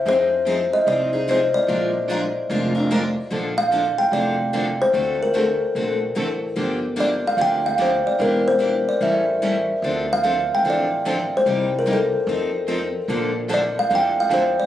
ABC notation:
X:1
M:4/4
L:1/8
Q:"Swing" 1/4=147
K:Bbmix
V:1 name="Kalimba"
c3 e d2 c d- | d6 z2 | [K:Bb] z f2 g d3 c- | c B A4- A z |
z2 d f g f c d | B c2 d =e3 z | z f2 g d3 c- | c B A4- A z |
z2 d f g f c d |]
V:2 name="Steel-string acoustic guitar"
[F,CEA] z [F,CEA] z [F,CEA] [CEA] [F,CEA] z | [F,A,DFB] z [F,A,DFB] z [F,A,DFB] [DFB] [F,A,DFB] z | [K:Bb] [D,F,B,DA] z [D,F,B,DA] z [D,F,B,DA] z [D,F,B,DA] z | [D,A,C^FA] z [D,A,CFA] z [D,A,CFA] z [D,A,CFA] z |
[D,F,B,DG] z [D,F,B,DG] z [D,F,B,DG] z [D,F,B,DG] z | [=E,B,DG] z [E,B,DG] z [E,G,^C=EA] z [E,G,CEA] z | [D,F,CDA] z [D,F,CDA] z [D,F,CDA] z [D,F,CDA] z | [C,G,B,EG] z [C,G,B,EG] z [F,CEA] z [F,CEA] z |
[D,F,B,DA] z [D,F,B,DA] z [D,F,B,DA] z [D,F,B,DA] z |]
V:3 name="Steel-string acoustic guitar"
[F,CEA] z [F,CEA] z [F,CEA] z [F,CEA] z | [F,A,DFB] z [F,A,DFB] z [F,A,DFB] z [F,A,DFB] z | [K:Bb] [D,F,B,DA] z [D,F,B,DA] z [D,F,B,DA] z [D,F,B,DA] z | [D,A,C^FA] z [D,A,CFA] z [D,A,CFA] z [D,A,CFA] z |
[D,F,B,DG] z [D,F,B,DG] z [D,F,B,DG] z [D,F,B,DG] z | [=E,G,D=EB] z [E,G,DEB] z [E,G,^CEA] z [E,G,CEA] z | [D,F,CDA] z [D,F,CDA] z [D,F,CDA] z [D,F,CDA] z | [C,G,B,EG] z [C,G,B,EG] z [F,CEA] z [F,CEA] z |
[D,F,B,DA] z [D,F,B,DA] z [D,F,B,DA] z [D,F,B,DA] z |]
V:4 name="Upright bass" clef=bass
F,,4 C,,4 | B,,,4 F,,,4 | [K:Bb] B,,,4 F,,,4 | D,,4 B,,,2 A,,,2 |
G,,,4 D,,4 | =E,,,4 A,,,4 | D,,4 A,,,4 | C,,4 F,,4 |
B,,,4 F,,4 |]